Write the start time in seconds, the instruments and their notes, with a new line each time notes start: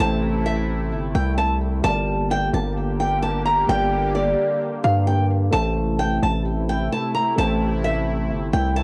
Already playing: analog synth pad C3 A3 E4, grand piano A3 E5
0.00 808-style bass A1, grand piano A4 C5 G5, nylon-string guitar A5
0.46 nylon-string guitar E5
0.92 808-style bass G1
1.15 808-style bass C2, nylon-string guitar G5
1.38 nylon-string guitar A5
1.82 808-style bass G1, analog synth pad D3 A#3 G4, grand piano G3 G4 A#4, nylon-string guitar A5
1.86 grand piano D5
2.31 nylon-string guitar G5
2.53 808-style bass G1, nylon-string guitar A5
3.00 nylon-string guitar G5
3.22 nylon-string guitar A5
3.45 nylon-string guitar A#5
3.66 808-style bass G1, grand piano G3 G4 A#4, nylon-string guitar G5
3.71 grand piano D5
4.15 nylon-string guitar D5
4.84 808-style bass G2, nylon-string guitar F5
5.07 nylon-string guitar G5
5.51 808-style bass A1, analog synth pad C3 A3 E4, grand piano A3 A4 C5, nylon-string guitar A5
5.56 grand piano E5
5.99 nylon-string guitar G5
6.23 808-style bass A1, nylon-string guitar A5
6.69 nylon-string guitar G5
6.92 nylon-string guitar A5
7.15 nylon-string guitar A#5
7.36 808-style bass A1, grand piano A3 A4 C5, nylon-string guitar A5
7.40 grand piano G5
7.84 nylon-string guitar E5
8.30 808-style bass G1
8.53 808-style bass C2, nylon-string guitar G5
8.76 nylon-string guitar A5